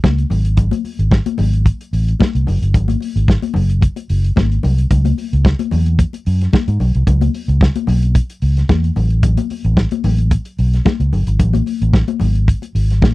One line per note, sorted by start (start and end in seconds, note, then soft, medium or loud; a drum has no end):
0.04 0.24 C#2 medium
0.04 kick loud
0.04 snare loud
0.04 muted conga soft
0.04 high conga medium
0.18 closed hi-hat soft
0.30 0.70 G#1 medium
0.30 open hi-hat medium
0.30 low conga medium
0.45 closed hi-hat medium
0.57 kick loud
0.57 closed hi-hat medium
0.57 low conga medium
0.71 closed hi-hat soft
0.71 muted conga soft
0.71 high conga medium
0.85 open hi-hat medium
0.85 high conga soft
0.99 1.19 G#1 medium
0.99 closed hi-hat soft
1.11 kick loud
1.11 snare loud
1.11 muted conga soft
1.26 closed hi-hat soft
1.26 muted conga soft
1.26 high conga medium
1.38 1.69 G#1 medium
1.38 open hi-hat medium
1.38 low conga medium
1.53 closed hi-hat soft
1.66 kick loud
1.66 closed hi-hat medium
1.81 closed hi-hat soft
1.93 2.13 A1 medium
1.93 open hi-hat medium
2.08 closed hi-hat soft
2.20 kick loud
2.20 snare loud
2.20 high conga medium
2.35 2.44 C2 medium
2.35 closed hi-hat soft
2.47 2.58 F#1 medium
2.47 open hi-hat medium
2.47 low conga medium
2.62 2.75 G1 medium
2.62 closed hi-hat medium
2.74 2.94 G#1 medium
2.74 kick loud
2.74 closed hi-hat medium
2.74 low conga medium
2.88 closed hi-hat soft
2.88 high conga medium
3.00 open hi-hat medium
3.00 high conga soft
3.16 3.35 G#1 medium
3.16 closed hi-hat soft
3.28 kick loud
3.28 snare loud
3.42 closed hi-hat soft
3.42 high conga medium
3.54 3.86 F#1 medium
3.54 open hi-hat medium
3.54 low conga medium
3.69 closed hi-hat soft
3.81 kick loud
3.81 closed hi-hat medium
3.81 muted conga soft
3.96 closed hi-hat soft
3.96 muted conga soft
4.09 4.30 F#1 medium
4.09 open hi-hat medium
4.24 closed hi-hat soft
4.36 4.57 G#1 medium
4.36 kick loud
4.36 snare loud
4.36 high conga medium
4.52 closed hi-hat soft
4.63 4.84 C2 medium
4.63 open hi-hat medium
4.63 low conga medium
4.78 closed hi-hat medium
4.91 5.11 C#2 medium
4.91 kick loud
4.91 closed hi-hat medium
4.91 muted conga soft
4.91 low conga medium
5.05 closed hi-hat soft
5.05 muted conga soft
5.05 high conga medium
5.18 open hi-hat medium
5.18 high conga soft
5.33 5.52 C#2 medium
5.33 closed hi-hat soft
5.45 kick loud
5.45 snare loud
5.59 closed hi-hat soft
5.59 muted conga soft
5.59 high conga medium
5.71 6.03 E2 medium
5.71 open hi-hat medium
5.71 low conga medium
5.86 closed hi-hat soft
5.99 kick loud
5.99 closed hi-hat medium
5.99 muted conga soft
6.13 closed hi-hat soft
6.13 muted conga soft
6.26 6.46 F#2 medium
6.26 open hi-hat medium
6.41 snare soft
6.41 closed hi-hat medium
6.53 kick loud
6.53 snare loud
6.53 muted conga soft
6.53 high conga medium
6.68 6.77 G#2 loud
6.68 closed hi-hat soft
6.68 muted conga soft
6.80 6.91 B1 medium
6.80 open hi-hat medium
6.80 low conga medium
6.95 7.04 C2 medium
6.95 closed hi-hat soft
7.07 7.27 C#2 medium
7.07 kick loud
7.07 closed hi-hat medium
7.07 muted conga soft
7.07 low conga medium
7.21 closed hi-hat soft
7.21 muted conga soft
7.21 high conga medium
7.34 open hi-hat medium
7.34 high conga soft
7.48 7.68 C#2 loud
7.48 closed hi-hat soft
7.61 kick loud
7.61 snare loud
7.75 closed hi-hat soft
7.75 muted conga soft
7.75 high conga medium
7.87 8.18 B1 medium
7.87 open hi-hat medium
7.87 low conga medium
8.03 closed hi-hat soft
8.15 kick loud
8.15 closed hi-hat medium
8.15 muted conga soft
8.30 closed hi-hat medium
8.42 8.62 C#2 medium
8.42 open hi-hat medium
8.57 snare soft
8.57 closed hi-hat medium
8.69 8.89 E2 medium
8.69 kick loud
8.69 snare loud
8.69 muted conga soft
8.69 high conga medium
8.84 closed hi-hat soft
8.96 9.36 A1 loud
8.96 open hi-hat soft
8.96 low conga medium
9.10 closed hi-hat medium
9.23 kick loud
9.23 closed hi-hat medium
9.23 muted conga soft
9.23 low conga medium
9.37 closed hi-hat soft
9.37 high conga medium
9.50 open hi-hat soft
9.50 high conga soft
9.64 9.85 A1 loud
9.64 closed hi-hat soft
9.77 kick loud
9.77 snare loud
9.91 closed hi-hat soft
9.91 high conga medium
10.04 10.35 A1 medium
10.04 open hi-hat medium
10.04 low conga medium
10.18 closed hi-hat soft
10.31 kick loud
10.31 closed hi-hat medium
10.31 muted conga soft
10.45 closed hi-hat soft
10.58 10.79 B1 medium
10.58 open hi-hat medium
10.73 snare soft
10.73 closed hi-hat soft
10.85 kick loud
10.85 snare loud
10.85 muted conga soft
10.85 high conga medium
11.00 11.09 C#2 medium
11.00 closed hi-hat soft
11.00 muted conga soft
11.13 11.23 G1 medium
11.13 open hi-hat medium
11.13 low conga medium
11.27 11.36 G#1 medium
11.27 closed hi-hat medium
11.40 11.60 A1 medium
11.40 kick loud
11.40 closed hi-hat medium
11.40 low conga medium
11.53 closed hi-hat soft
11.53 muted conga soft
11.53 high conga medium
11.66 open hi-hat medium
11.66 high conga soft
11.82 12.01 A1 medium
11.82 closed hi-hat soft
11.94 kick loud
11.94 snare loud
12.08 closed hi-hat soft
12.08 high conga medium
12.20 12.51 G#1 medium
12.20 open hi-hat medium
12.20 low conga medium
12.35 closed hi-hat soft
12.48 kick loud
12.48 closed hi-hat medium
12.62 closed hi-hat soft
12.62 muted conga soft
12.75 13.03 G#1 medium
12.75 open hi-hat medium
12.90 snare soft
12.90 closed hi-hat soft
13.02 13.14 A1 medium
13.02 kick loud
13.02 snare loud
13.02 high conga medium